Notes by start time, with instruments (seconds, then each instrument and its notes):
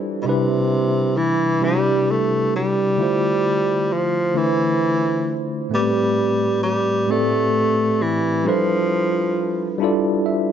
Already playing: tine electric piano G3 D4 E4 G4 A4 C5 D5
0.22 tenor saxophone B2, tine electric piano C3 G3
0.27 tenor saxophone C3, tine electric piano D4 E4 B4
1.17 tenor saxophone E3
1.61 tine electric piano C3 G3 D4, tenor saxophone G3
1.65 tine electric piano E4 G4
2.11 tenor saxophone A3
2.56 tenor saxophone G3
2.97 tine electric piano D3 A3 E4
3.01 tine electric piano F4 C5
3.92 tenor saxophone F3
4.34 tine electric piano D3 A3 D4 E4, tenor saxophone E3
4.39 tine electric piano C5
5.69 tine electric piano A2 A3 B3
5.74 tenor saxophone G3, tine electric piano G4 B4
5.79 tine electric piano C4
6.63 tenor saxophone G3
7.07 tine electric piano A2 A3 C4
7.11 tenor saxophone A3, tine electric piano G4 D5
8.02 tenor saxophone E3
8.44 tenor saxophone F3, tine electric piano G3 D4 E4 F4 A4
8.49 tine electric piano B4
9.78 tine electric piano G3 D4 E4 F4
9.83 tine electric piano A4 D5
10.26 tine electric piano E5